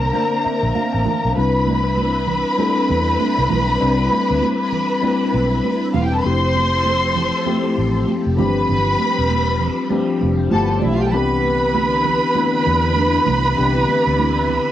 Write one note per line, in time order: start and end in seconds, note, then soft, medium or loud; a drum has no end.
0.00 1.32 D3 medium
0.00 0.13 A#3 medium
0.00 1.32 A#3 medium
0.00 1.32 C4 medium
0.00 0.14 D4 medium
0.00 0.14 A#4 medium
0.00 1.32 A#4 medium
0.00 0.15 C5 medium
0.00 1.32 A#5 medium
0.13 1.12 A#3 medium
0.13 1.12 D4 medium
0.13 1.12 A#4 medium
0.13 1.12 C5 medium
0.13 muted conga soft
0.13 high conga medium
0.45 0.73 E5 medium
0.45 muted fingered electric bass stroke soft
0.63 0.74 A#1 medium
0.75 0.92 F5 medium
0.75 muted conga soft
0.75 high conga medium
0.93 1.05 A1 medium
0.93 1.05 A5 medium
1.06 1.34 A#5 medium
1.06 high conga medium
1.06 low conga medium
1.25 1.35 B1 medium
1.36 2.42 C2 medium
1.36 2.34 G3 medium
1.36 2.34 C4 medium
1.36 6.21 C4 medium
1.36 2.34 D4 medium
1.36 6.21 D4 medium
1.36 8.35 E4 medium
1.36 2.35 E4 medium
1.36 5.85 B4 medium
1.36 6.21 B4 medium
1.36 2.35 B4 medium
1.36 5.86 B5 loud
1.36 muted conga soft
1.67 muted conga soft
1.67 high conga medium
1.97 high conga medium
2.27 muted conga soft
2.27 low conga medium
2.57 3.56 G3 medium
2.57 3.56 C4 medium
2.57 3.56 D4 medium
2.57 3.57 E4 medium
2.57 3.57 A4 medium
2.57 high conga medium
2.89 3.15 E2 medium
2.89 muted conga soft
2.89 high conga soft
3.20 muted conga soft
3.20 high conga medium
3.38 3.49 C2 loud
3.50 3.76 B1 loud
3.50 high conga medium
3.50 low conga medium
3.80 4.07 C2 medium
3.80 4.78 G3 medium
3.80 4.78 C4 medium
3.80 4.79 D4 medium
3.80 4.79 E4 medium
3.80 4.79 B4 medium
3.80 muted conga soft
4.12 muted conga soft
4.12 high conga medium
4.31 4.41 D2 loud
4.42 muted conga soft
4.42 high conga medium
4.72 muted conga soft
4.72 low conga medium
5.01 6.00 G3 medium
5.01 6.00 C4 medium
5.01 6.01 D4 medium
5.01 6.01 E4 medium
5.01 6.01 B4 medium
5.01 muted conga soft
5.01 high conga medium
5.33 5.59 B1 medium
5.33 high conga medium
5.64 high conga medium
5.94 6.21 E1 medium
5.94 6.03 F4 medium
5.94 6.03 F5 medium
5.94 muted conga soft
5.94 high conga medium
5.94 low conga medium
6.04 6.12 G4 medium
6.04 6.12 G5 medium
6.12 6.19 A4 medium
6.12 6.18 A5 medium
6.18 6.25 B4 medium
6.18 6.25 B5 medium
6.24 7.31 F1 loud
6.24 7.22 F3 medium
6.24 8.36 F3 medium
6.24 7.23 A3 medium
6.24 7.23 C4 medium
6.24 7.23 E4 medium
6.24 8.37 G4 medium
6.24 7.23 G4 loud
6.24 8.36 A4 loud
6.24 8.04 C5 loud
6.24 8.04 C6 loud
6.24 muted conga soft
6.55 muted conga soft
6.55 high conga medium
6.86 muted conga soft
6.86 high conga medium
7.16 low conga medium
7.45 8.36 F3 medium
7.45 8.38 A3 medium
7.45 8.37 C4 medium
7.45 8.39 E4 medium
7.45 8.38 G4 loud
7.45 muted conga soft
7.45 high conga medium
7.77 8.04 A1 medium
7.77 high conga soft
8.08 high conga medium
8.26 8.39 F1 medium
8.37 8.65 G1 medium
8.37 9.36 F3 medium
8.37 11.11 F3 medium
8.37 9.37 G3 medium
8.37 11.11 G3 medium
8.37 9.37 C4 medium
8.37 10.51 C4 medium
8.37 9.37 D4 medium
8.37 9.38 G4 medium
8.37 10.18 B4 loud
8.37 10.18 B5 loud
8.37 muted conga soft
8.37 high conga medium
8.37 low conga medium
8.69 8.95 G1 loud
8.69 muted conga soft
8.69 low conga medium
9.00 muted conga soft
9.00 high conga medium
9.18 9.69 E1 medium
9.31 high conga medium
9.61 low conga medium
9.90 10.49 F3 medium
9.90 10.52 G3 medium
9.90 10.52 C4 medium
9.90 10.52 D4 medium
9.90 10.52 G4 medium
9.90 muted conga soft
9.90 high conga medium
10.21 10.48 F1 medium
10.21 muted conga soft
10.21 high conga soft
10.51 10.78 G1 loud
10.51 11.02 F3 medium
10.51 11.02 A3 medium
10.51 11.03 B3 medium
10.51 11.03 E4 medium
10.51 11.03 G4 loud
10.51 10.70 A4 loud
10.51 14.72 B4 medium
10.51 10.70 A5 loud
10.51 muted conga soft
10.51 high conga medium
10.62 10.70 B3 medium
10.62 10.71 B4 medium
10.70 10.77 C4 medium
10.70 10.76 C5 medium
10.78 10.83 D4 medium
10.78 10.84 D5 medium
10.82 11.14 B1 medium
10.82 10.92 E4 medium
10.82 10.92 E5 medium
10.82 muted conga soft
10.82 high conga medium
10.82 low conga medium
10.94 11.02 F4 medium
10.94 11.02 F5 medium
11.01 11.07 G4 medium
11.01 11.08 G5 medium
11.07 11.13 A4 medium
11.07 11.14 A5 medium
11.12 12.19 C2 loud
11.12 14.72 D3 medium
11.12 12.10 E3 medium
11.12 12.11 B3 medium
11.12 12.11 C4 medium
11.12 12.11 D4 medium
11.12 14.72 D4 medium
11.12 14.72 E4 medium
11.12 12.11 G4 loud
11.12 14.72 B4 loud
11.12 14.72 B5 loud
11.12 muted conga soft
11.43 high conga medium
11.75 muted conga soft
11.75 high conga medium
12.05 low conga medium
12.34 13.32 E3 medium
12.34 13.33 B3 medium
12.34 13.33 C4 medium
12.34 13.33 D4 medium
12.34 13.34 E4 medium
12.34 high conga medium
12.66 13.17 E2 medium
12.66 muted conga soft
12.66 high conga soft
12.96 high conga medium
13.26 13.53 C2 loud
13.26 muted conga soft
13.26 high conga medium
13.26 low conga medium
13.56 13.84 C2 medium
13.56 14.55 E3 medium
13.56 14.55 B3 medium
13.56 14.55 C4 medium
13.56 14.55 D4 medium
13.56 14.56 G4 medium
13.88 high conga medium
14.07 14.57 D2 medium
14.19 muted conga soft
14.19 high conga medium
14.48 muted conga soft
14.48 low conga medium